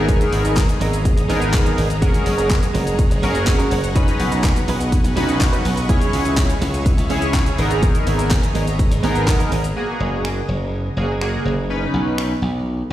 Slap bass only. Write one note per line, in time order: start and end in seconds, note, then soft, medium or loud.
0.00 0.24 G#1 medium
0.32 0.72 G#1 medium
0.81 1.11 G#1 loud
1.17 1.27 G#1 medium
1.30 1.69 G#1 medium
1.78 2.18 G#1 loud
2.26 2.66 F#1 medium
2.75 3.04 F#1 loud
3.11 3.21 F#1 medium
3.23 3.63 F#1 medium
3.71 4.11 F#1 medium
4.20 4.59 B1 medium
4.68 4.98 B1 loud
5.05 5.14 B1 medium
5.17 5.56 B1 medium
5.65 6.05 B1 loud
6.13 6.53 C#2 medium
6.62 6.91 C#2 loud
6.98 7.08 C#2 medium
7.10 7.50 C#2 medium
7.58 7.98 G#1 medium
8.07 8.46 G#1 medium
8.55 8.85 G#1 loud
8.91 9.01 G#1 medium
9.03 9.43 G#1 medium
9.52 9.72 G#1 loud
10.00 10.40 F#1 medium
10.48 10.88 F#1 medium
10.97 11.37 F#1 medium
11.45 11.85 F#1 medium
11.94 12.33 B1 medium
12.42 12.82 B1 medium